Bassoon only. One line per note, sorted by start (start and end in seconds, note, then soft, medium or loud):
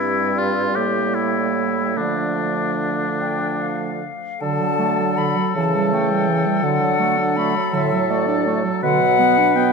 0.00 0.78 G2 medium
0.76 1.99 A2 soft
1.98 4.07 D3 soft
4.42 5.37 D3 medium
5.55 6.46 C#3 medium
6.63 7.55 D3 medium
7.73 8.65 A2 medium
8.83 9.73 B2 medium